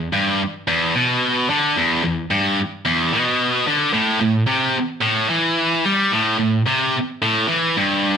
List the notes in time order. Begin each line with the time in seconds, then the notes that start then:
0.13 G2
0.68 E2
0.95 B2
1.50 D3
1.77 E2
2.04 E2
2.31 G2
2.86 E2
3.13 B2
3.67 D3
3.93 A2
4.21 A2
4.47 C3
5.02 A2
5.30 E3
5.85 G3
6.12 A2
6.39 A2
6.67 C3
7.22 A2
7.48 E3
7.77 G2